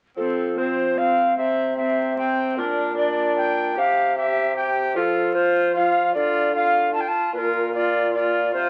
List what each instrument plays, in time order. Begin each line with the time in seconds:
0.17 bassoon F3, viola C4, recorder A4
0.58 viola C4, recorder C5
0.98 viola C4, recorder F5
1.38 bassoon C3, viola C4, recorder E5
1.77 viola C4, recorder E5
2.18 viola C4, recorder G5
2.57 bassoon A#2, viola D4, recorder A#4
2.97 viola D4, recorder D5
3.38 recorder G5
3.77 bassoon C3, viola G4, recorder F5
4.17 viola G4, recorder E5
4.56 viola G4, recorder G5
4.95 bassoon F3, viola F4, recorder A4
5.34 viola F4, recorder C5
5.75 viola F4, recorder F5
6.14 bassoon D3, viola F4, recorder D5
6.55 viola F4, recorder F5
6.94 viola F4, recorder A5
7.01 recorder G5
7.08 recorder A5
7.34 bassoon A#2, viola F4, recorder B4
7.38 recorder A#4
7.74 viola F4, recorder D5
8.13 viola F4, recorder D5
8.53 bassoon C3, viola F4, recorder C5